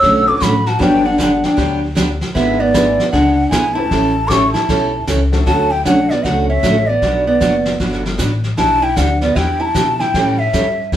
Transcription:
Already playing: hollow-body jazz guitar C#5, bansuri E6
0.02 upright bass B1, steel-string acoustic guitar D3 F#3 A3 C#4 F#4, brush sweep, kick, snare
0.27 honky-tonk piano C#4 D4 F#4 A4 C#5, hollow-body jazz guitar B4, bansuri D6
0.40 upright bass A1, steel-string acoustic guitar D3 F#3 A3 C#4 F#4, hollow-body jazz guitar F#4, bansuri B5, kick, snare, hi-hat pedal
0.66 hollow-body jazz guitar F#4, bansuri A5, snare
0.79 upright bass G1, steel-string acoustic guitar D3 F#3 B3 D4 G4, honky-tonk piano B3 D4 F#4 G4 B4, hollow-body jazz guitar D4, bansuri G5, brush sweep, kick, snare
1.06 hollow-body jazz guitar D4, bansuri F#5
1.18 steel-string acoustic guitar D3 F#3 B3 D4 G4, hollow-body jazz guitar D4, bansuri G5, kick, snare, hi-hat pedal
1.26 bansuri F#5
1.44 hollow-body jazz guitar D4, bansuri G5, snare
1.56 upright bass D2, steel-string acoustic guitar D3 F#3 B3 D4 G4, brush sweep, kick, snare
1.95 steel-string acoustic guitar D3 F#3 B3 D4 G4, kick, snare, hi-hat pedal
2.21 snare
2.35 upright bass G#1, steel-string acoustic guitar D3 G#3 B3 E4 G#4, hollow-body jazz guitar B3, bansuri E5, brush sweep, kick, snare
2.60 hollow-body jazz guitar B3, bansuri D5
2.74 steel-string acoustic guitar D3 G#3 B3 E4 G#4, honky-tonk piano B3 D4 E4 G#4 B4, kick, snare, hi-hat pedal
3.00 snare
3.11 upright bass C#2, steel-string acoustic guitar D3 G#3 B3 E4 G#4, hollow-body jazz guitar D4, bansuri F#5, brush sweep, kick, snare
3.50 upright bass B1, steel-string acoustic guitar D3 G#3 B3 E4 G#4, hollow-body jazz guitar E4, bansuri G#5, kick, snare, hi-hat pedal
3.74 honky-tonk piano A3 C#4 E4 G4 B4, hollow-body jazz guitar E4, bansuri A5
3.91 upright bass A1, steel-string acoustic guitar E3 G3 C#4 E4 A4, brush sweep, kick, snare
4.28 steel-string acoustic guitar E3 G3 C#4 E4 A4, honky-tonk piano A3 C#4 E4 G4 A4, hollow-body jazz guitar A4, bansuri D6, kick, snare, hi-hat pedal
4.32 bansuri C#6
4.53 hollow-body jazz guitar E4, bansuri A5, snare
4.69 upright bass B1, steel-string acoustic guitar E3 G3 C#4 E4 A4, brush sweep, kick, snare
5.07 upright bass C#2, steel-string acoustic guitar E3 G3 C#4 E4 A4, kick, snare, hi-hat pedal
5.32 honky-tonk piano A3 C#4 D4 F#4 A4, snare
5.46 upright bass D2, steel-string acoustic guitar D3 F#3 A3 C#4 F#4, hollow-body jazz guitar F#4, bansuri A5, brush sweep, kick, snare
5.71 hollow-body jazz guitar E4, bansuri G5
5.85 upright bass B1, steel-string acoustic guitar D3 F#3 A3 C#4 F#4, hollow-body jazz guitar D4, bansuri F#5, kick, snare, hi-hat pedal
6.10 hollow-body jazz guitar B3, bansuri D5, snare
6.24 upright bass C#2, steel-string acoustic guitar D3 F#3 A3 C#4 F#4, hollow-body jazz guitar D4, bansuri F#5, brush sweep, kick, snare
6.49 hollow-body jazz guitar C#4, bansuri E5
6.63 upright bass A1, steel-string acoustic guitar D3 F#3 A3 C#4 F#4, kick, snare, hi-hat pedal
6.87 hollow-body jazz guitar B3, bansuri D5
7.02 upright bass B1, steel-string acoustic guitar B2 F#3 B3 D4 F#4, brush sweep, kick, snare
7.27 hollow-body jazz guitar B3, bansuri D5
7.41 upright bass F#1, steel-string acoustic guitar B2 F#3 B3 D4 F#4, kick, snare, hi-hat pedal
7.66 snare
7.80 upright bass G1, steel-string acoustic guitar B2 F#3 B3 D4 F#4, brush sweep, kick, snare
7.93 snare
8.06 snare
8.18 upright bass A1, steel-string acoustic guitar B2 F#3 B3 D4 F#4, kick, snare, hi-hat pedal
8.44 snare
8.57 upright bass B1, steel-string acoustic guitar E3 B3 D4 G4, hollow-body jazz guitar E4, bansuri A5, brush sweep, kick, snare
8.82 hollow-body jazz guitar E4, bansuri G5
8.96 upright bass D2, steel-string acoustic guitar E3 B3 D4 G4, hollow-body jazz guitar D4, bansuri F#5, kick, snare, hi-hat pedal
9.21 hollow-body jazz guitar B3, bansuri D5, snare
9.35 upright bass E2, steel-string acoustic guitar E3 B3 D4 G4, hollow-body jazz guitar E4, bansuri G5, brush sweep, kick, snare
9.60 hollow-body jazz guitar E4, bansuri A#5
9.65 bansuri A5
9.74 upright bass B2, steel-string acoustic guitar E3 B3 D4 G4, kick, snare, hi-hat pedal
10.00 hollow-body jazz guitar E4, bansuri G5, snare
10.14 upright bass A2, steel-string acoustic guitar E3 G3 C#4 E4 A4, brush sweep, kick, snare
10.39 hollow-body jazz guitar C#4, bansuri E5
10.53 upright bass G2, steel-string acoustic guitar E3 G3 C#4 E4 A4, kick, snare, hi-hat pedal
10.92 upright bass F#2, steel-string acoustic guitar E3 G3 C#4 E4 A4, brush sweep, kick, snare

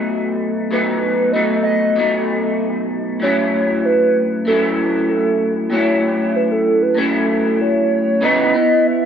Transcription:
Already playing: clean electric guitar B2 F#3 A3 D#4
0.71 clean electric guitar B2 F#3 A3 D#4, soft synth lead B4
1.32 clean electric guitar B2 F#3 A3 D#4, soft synth lead D#5
1.63 soft synth lead D#5
1.96 clean electric guitar B2 F#3 A3 D#4
3.20 clean electric guitar A2 F#3 C#4, soft synth lead C#5
3.24 clean electric guitar E4
3.85 soft synth lead B4
4.45 clean electric guitar A2 F#3 C#4, soft synth lead A4
4.50 clean electric guitar E4
5.09 soft synth lead A4
5.70 clean electric guitar A2 F#3 C#4 E4, soft synth lead C#5
6.36 soft synth lead B4
6.51 soft synth lead A4
6.82 soft synth lead B4
6.95 clean electric guitar A2 F#3 C#4, soft synth lead A4
6.99 clean electric guitar E4
7.61 soft synth lead C#5
8.21 clean electric guitar C#3 E3 B3 D#4, soft synth lead D#5
8.54 clean electric guitar E3 B3
8.87 soft synth lead E5

